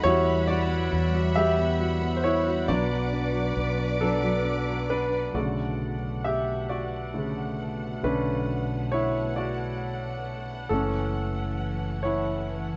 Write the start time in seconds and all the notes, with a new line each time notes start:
Already playing: A3 D#4 F#5 B5
0.03 E2 G3 E4 F#4 C#5 E5
0.26 B3
0.47 F#4 D5
0.70 B3
0.92 E2 E4
1.14 F#4
1.36 G3 F#4 G4 E5
1.58 B3
1.79 F#4
2.01 B3
2.17 C5
2.24 E4 C#5
2.46 F#4
2.68 B1 F#3 B3 D4 F#4 B4 D5 D6
2.91 F#3
3.12 D4
3.34 F#3
3.56 B1 B3
3.78 D4
4.00 F#3 D4 A4
4.23 F#3
4.45 D4
4.67 F#3
4.90 B3 D4 B4
5.12 D4
5.34 B1 B2 C#3 D3 A3 B3 F#4 D5 F#5
6.24 G4 E5
6.69 F#4 D5
7.14 C#3 D3 A3
8.03 B1 D3 A3 C#4 D4 B4
8.92 E4 C#5
9.36 F#4 D5
10.69 F#1 E3 A3 C#4 A4
12.03 E4 C#5